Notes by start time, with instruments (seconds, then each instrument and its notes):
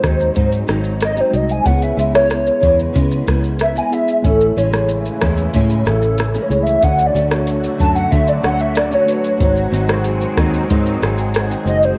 Already playing: tine electric piano G#3 D#4 F#4 C5 D#5, soft synth lead C5
0.02 fingered electric bass D#2, nylon-string guitar G#2 F#3 C4 D#4, kick, cross-stick, closed hi-hat, shaker
0.20 shaker
0.34 nylon-string guitar G#2 F#3 C4 D#4, fingered electric bass G#2, kick, closed hi-hat, shaker
0.52 shaker
0.66 fingered electric bass G#1, nylon-string guitar G#2 F#3 C4 D#4, cross-stick, closed hi-hat, shaker
0.84 shaker
1.01 soft synth lead D#5, cross-stick, closed hi-hat, shaker
1.15 nylon-string guitar F#3 C4 D#4, shaker
1.20 soft synth lead C5
1.31 fingered electric bass C2, tine electric piano G#3 D#4 F#4 D#5, closed hi-hat, shaker
1.35 soft synth lead D#5
1.49 soft synth lead G#5, shaker
1.63 fingered electric bass C#2, nylon-string guitar C#3 G#3 B3 E4, tine electric piano B3 E4 G#4 C#5, soft synth lead F#5, kick, closed hi-hat, shaker
1.82 soft synth lead E5, shaker
1.96 fingered electric bass C#2, nylon-string guitar C#3 G#3 B3 E4, closed hi-hat, shaker
2.12 tine electric piano B3 E4 G#4 C#5, soft synth lead C#5, cross-stick, shaker
2.30 cross-stick, closed hi-hat, shaker
2.47 shaker
2.60 fingered electric bass E2, nylon-string guitar C#3 G#3 B3 E4, kick, closed hi-hat, shaker
2.80 shaker
2.93 nylon-string guitar C#3 G#3 B3 E4, fingered electric bass C#3, kick, closed hi-hat, shaker
3.11 shaker
3.26 fingered electric bass C#2, nylon-string guitar C#3 G#3 B3 E4, kick, cross-stick, closed hi-hat, shaker
3.43 shaker
3.59 soft synth lead E5, cross-stick, closed hi-hat, shaker
3.74 nylon-string guitar G#3 B3 E4, soft synth lead G#5, shaker
3.90 tine electric piano B3 E4 G#4 E5, soft synth lead E5, closed hi-hat, shaker
4.08 shaker
4.22 fingered electric bass A1, nylon-string guitar A2 C#4 E4, analog synth pad C#3 E3 E4, tine electric piano A3 E4 C#5 G#5, soft synth lead A4, kick, closed hi-hat, shaker
4.41 shaker
4.56 fingered electric bass A1, nylon-string guitar A2 G#3 C#4 E4, soft synth lead C#5, closed hi-hat, shaker
4.71 tine electric piano A3 E4 G#4 C#5, cross-stick, shaker
4.89 closed hi-hat, shaker
5.06 shaker
5.21 fingered electric bass E2, nylon-string guitar A2 G#3 C#4 E4, kick, cross-stick, closed hi-hat, shaker
5.37 shaker
5.53 nylon-string guitar A2 G#3 C#4 E4, fingered electric bass A2, kick, closed hi-hat, shaker
5.70 shaker
5.85 fingered electric bass A1, nylon-string guitar A2 C#4 E4, soft synth lead A4, cross-stick, closed hi-hat, shaker
6.02 shaker
6.18 cross-stick, closed hi-hat, shaker
6.34 nylon-string guitar G#3 C#4 E4, shaker
6.42 soft synth lead C#5
6.49 fingered electric bass C#2, tine electric piano A3 E4 G#4 C#5, closed hi-hat, shaker
6.63 soft synth lead E5, shaker
6.81 fingered electric bass D2, nylon-string guitar D3 F#3 A3 C#4, analog synth pad D3, tine electric piano A3 D4 F#4 C#5, soft synth lead F#5, kick, closed hi-hat, shaker
6.85 analog synth pad F#3 A3 F#4
6.99 shaker
7.06 soft synth lead D5
7.13 fingered electric bass D2, nylon-string guitar D3 F#3 A3 C#4, closed hi-hat, shaker
7.30 tine electric piano A3 D4 F#4 C#5, cross-stick, shaker
7.47 closed hi-hat, shaker
7.64 shaker
7.78 fingered electric bass F#2, nylon-string guitar D3 F#3 A3 C#4, soft synth lead A5, kick, closed hi-hat, shaker
7.95 soft synth lead F#5, shaker
8.11 nylon-string guitar D3 F#3 A3 C#4, fingered electric bass D3, soft synth lead E5, kick, closed hi-hat, shaker
8.28 soft synth lead D5, shaker
8.43 fingered electric bass D2, nylon-string guitar D3 F#3 A3 C#4, soft synth lead F#5, cross-stick, closed hi-hat, shaker
8.59 soft synth lead E5, shaker
8.75 soft synth lead D5, cross-stick, closed hi-hat, shaker
8.90 nylon-string guitar F#3 A3 C#4, soft synth lead C#5, shaker
9.06 tine electric piano A3 D4 F#4 B4, closed hi-hat, shaker
9.24 shaker
9.38 fingered electric bass G#1, nylon-string guitar G#2 F#3 C4 D#4, analog synth pad D#3 C4 G#4, tine electric piano G#3 D#4 F#4 C5, kick, closed hi-hat, shaker
9.57 shaker
9.70 fingered electric bass G#1, nylon-string guitar G#2 F#3 C4 D#4, closed hi-hat, shaker
9.87 tine electric piano G#3 D#4 F#4 C5, cross-stick, shaker
10.04 closed hi-hat, shaker
10.21 shaker
10.36 fingered electric bass D#2, nylon-string guitar G#2 F#3 C4 D#4, kick, cross-stick, closed hi-hat, shaker
10.54 shaker
10.68 nylon-string guitar G#2 F#3 C4 D#4, fingered electric bass G#2, kick, closed hi-hat, shaker
10.86 shaker
11.01 fingered electric bass G#1, nylon-string guitar G#2 F#3 C4 D#4, cross-stick, closed hi-hat, shaker
11.18 shaker
11.34 cross-stick, closed hi-hat, shaker
11.49 nylon-string guitar F#3 C4 D#4, shaker
11.65 fingered electric bass F#1, tine electric piano G#3 D#4 F#4 C5, soft synth lead D#5, closed hi-hat, shaker
11.83 soft synth lead C5, shaker